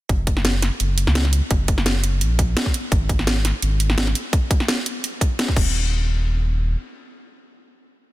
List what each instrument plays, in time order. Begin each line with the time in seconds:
0.09 sub bass F#1, kick, closed hi-hat
0.27 kick, closed hi-hat
0.37 snare
0.45 snare, closed hi-hat
0.62 snare, closed hi-hat
0.80 sub bass F#1, closed hi-hat
0.98 closed hi-hat
1.07 sub bass C#2, snare
1.15 snare, closed hi-hat
1.25 snare
1.33 closed hi-hat
1.51 sub bass F#1, kick, closed hi-hat
1.68 kick, closed hi-hat
1.78 snare
1.86 snare, closed hi-hat
2.04 closed hi-hat
2.21 sub bass A#1, closed hi-hat
2.39 kick, closed hi-hat
2.57 snare, closed hi-hat
2.66 kick
2.74 closed hi-hat
2.92 sub bass G#1, kick, closed hi-hat
3.09 kick, closed hi-hat
3.19 snare
3.27 snare, closed hi-hat
3.45 snare, closed hi-hat
3.62 sub bass G#1, closed hi-hat
3.80 closed hi-hat
3.90 snare
3.98 snare, closed hi-hat
4.07 snare
4.15 closed hi-hat
4.33 kick, closed hi-hat
4.51 kick, closed hi-hat
4.60 snare
4.68 snare, closed hi-hat
4.86 closed hi-hat
5.04 closed hi-hat
5.21 kick, closed hi-hat
5.39 snare, closed hi-hat
5.48 kick
5.56 sub bass D#1, kick, crash